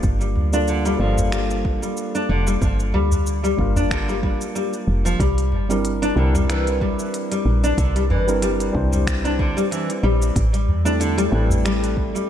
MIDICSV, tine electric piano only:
0, 0, Header, 1, 2, 480
1, 0, Start_track
1, 0, Tempo, 645161
1, 28, Time_signature, 4, 2, 24, 8
1, 9148, End_track
2, 0, Start_track
2, 0, Title_t, "Tine electric piano"
2, 0, Program_c, 0, 4
2, 0, Note_on_c, 0, 55, 79
2, 0, Note_on_c, 0, 58, 73
2, 0, Note_on_c, 0, 62, 75
2, 0, Note_on_c, 0, 65, 72
2, 0, Note_on_c, 0, 70, 90
2, 357, Note_off_c, 0, 55, 0
2, 361, Note_off_c, 0, 58, 0
2, 364, Note_off_c, 0, 62, 0
2, 368, Note_off_c, 0, 65, 0
2, 372, Note_off_c, 0, 70, 0
2, 389, Note_on_c, 0, 55, 69
2, 393, Note_on_c, 0, 58, 64
2, 397, Note_on_c, 0, 62, 70
2, 400, Note_on_c, 0, 65, 71
2, 405, Note_on_c, 0, 69, 82
2, 717, Note_off_c, 0, 55, 0
2, 719, Note_off_c, 0, 58, 0
2, 721, Note_off_c, 0, 62, 0
2, 722, Note_off_c, 0, 65, 0
2, 725, Note_off_c, 0, 69, 0
2, 727, Note_on_c, 0, 55, 86
2, 734, Note_on_c, 0, 58, 75
2, 742, Note_on_c, 0, 62, 73
2, 750, Note_on_c, 0, 65, 80
2, 758, Note_on_c, 0, 69, 90
2, 2277, Note_off_c, 0, 55, 0
2, 2281, Note_off_c, 0, 58, 0
2, 2285, Note_off_c, 0, 62, 0
2, 2289, Note_off_c, 0, 65, 0
2, 2293, Note_off_c, 0, 69, 0
2, 2655, Note_on_c, 0, 55, 80
2, 2662, Note_on_c, 0, 58, 75
2, 2668, Note_on_c, 0, 62, 74
2, 2677, Note_on_c, 0, 65, 76
2, 2684, Note_on_c, 0, 70, 83
2, 3848, Note_off_c, 0, 55, 0
2, 3852, Note_off_c, 0, 58, 0
2, 3855, Note_off_c, 0, 62, 0
2, 3859, Note_off_c, 0, 65, 0
2, 3863, Note_off_c, 0, 70, 0
2, 4234, Note_on_c, 0, 55, 77
2, 4237, Note_on_c, 0, 60, 67
2, 4240, Note_on_c, 0, 62, 68
2, 4246, Note_on_c, 0, 64, 68
2, 4248, Note_on_c, 0, 70, 81
2, 4560, Note_off_c, 0, 55, 0
2, 4561, Note_off_c, 0, 60, 0
2, 4562, Note_off_c, 0, 62, 0
2, 4565, Note_off_c, 0, 64, 0
2, 4566, Note_off_c, 0, 70, 0
2, 4579, Note_on_c, 0, 55, 88
2, 4587, Note_on_c, 0, 60, 82
2, 4594, Note_on_c, 0, 62, 77
2, 4600, Note_on_c, 0, 64, 83
2, 4608, Note_on_c, 0, 70, 89
2, 6123, Note_off_c, 0, 55, 0
2, 6127, Note_off_c, 0, 60, 0
2, 6131, Note_off_c, 0, 62, 0
2, 6134, Note_off_c, 0, 64, 0
2, 6138, Note_off_c, 0, 70, 0
2, 6155, Note_on_c, 0, 55, 83
2, 6157, Note_on_c, 0, 60, 70
2, 6161, Note_on_c, 0, 62, 76
2, 6166, Note_on_c, 0, 64, 74
2, 6169, Note_on_c, 0, 70, 87
2, 6480, Note_off_c, 0, 55, 0
2, 6481, Note_off_c, 0, 60, 0
2, 6483, Note_off_c, 0, 62, 0
2, 6485, Note_off_c, 0, 64, 0
2, 6487, Note_off_c, 0, 70, 0
2, 6491, Note_on_c, 0, 55, 86
2, 6498, Note_on_c, 0, 60, 78
2, 6506, Note_on_c, 0, 62, 81
2, 6514, Note_on_c, 0, 64, 78
2, 6521, Note_on_c, 0, 72, 95
2, 7687, Note_off_c, 0, 55, 0
2, 7690, Note_off_c, 0, 60, 0
2, 7694, Note_off_c, 0, 62, 0
2, 7698, Note_off_c, 0, 64, 0
2, 7701, Note_off_c, 0, 72, 0
2, 8071, Note_on_c, 0, 55, 78
2, 8074, Note_on_c, 0, 57, 67
2, 8079, Note_on_c, 0, 60, 70
2, 8083, Note_on_c, 0, 64, 72
2, 8086, Note_on_c, 0, 69, 81
2, 8398, Note_off_c, 0, 55, 0
2, 8400, Note_off_c, 0, 57, 0
2, 8402, Note_off_c, 0, 60, 0
2, 8404, Note_off_c, 0, 64, 0
2, 8405, Note_off_c, 0, 69, 0
2, 8409, Note_on_c, 0, 55, 92
2, 8416, Note_on_c, 0, 57, 80
2, 8422, Note_on_c, 0, 60, 84
2, 8431, Note_on_c, 0, 64, 78
2, 8439, Note_on_c, 0, 69, 99
2, 9148, Note_off_c, 0, 55, 0
2, 9148, Note_off_c, 0, 57, 0
2, 9148, Note_off_c, 0, 60, 0
2, 9148, Note_off_c, 0, 64, 0
2, 9148, Note_off_c, 0, 69, 0
2, 9148, End_track
0, 0, End_of_file